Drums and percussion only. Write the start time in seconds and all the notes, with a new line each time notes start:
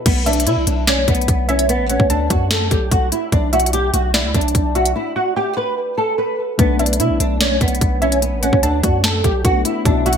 0.06 kick, closed hi-hat, crash
0.26 closed hi-hat
0.33 closed hi-hat
0.40 closed hi-hat
0.47 closed hi-hat
0.67 closed hi-hat
0.87 snare, closed hi-hat
1.08 kick, closed hi-hat
1.15 closed hi-hat
1.21 closed hi-hat
1.28 kick, closed hi-hat
1.49 closed hi-hat
1.59 closed hi-hat
1.69 closed hi-hat
1.90 closed hi-hat
2.00 kick
2.10 closed hi-hat
2.30 kick, closed hi-hat
2.51 snare, closed hi-hat
2.71 kick, closed hi-hat
2.92 kick, closed hi-hat
3.12 closed hi-hat
3.32 kick, closed hi-hat
3.53 closed hi-hat
3.60 closed hi-hat
3.66 closed hi-hat
3.73 closed hi-hat
3.94 closed hi-hat
4.14 snare, closed hi-hat
4.34 kick, closed hi-hat
4.41 closed hi-hat
4.48 closed hi-hat
4.55 kick, closed hi-hat
4.75 closed hi-hat
4.85 closed hi-hat
6.59 kick, closed hi-hat
6.79 closed hi-hat
6.86 closed hi-hat
6.93 closed hi-hat
7.00 closed hi-hat
7.20 closed hi-hat
7.41 snare, closed hi-hat
7.61 kick, closed hi-hat
7.68 closed hi-hat
7.75 closed hi-hat
7.81 kick, closed hi-hat
8.02 closed hi-hat
8.12 closed hi-hat
8.22 closed hi-hat
8.43 closed hi-hat
8.53 kick
8.63 closed hi-hat
8.83 kick, closed hi-hat
9.04 snare, closed hi-hat
9.24 kick, closed hi-hat
9.45 kick, closed hi-hat
9.65 closed hi-hat
9.85 kick, closed hi-hat
10.06 closed hi-hat
10.13 closed hi-hat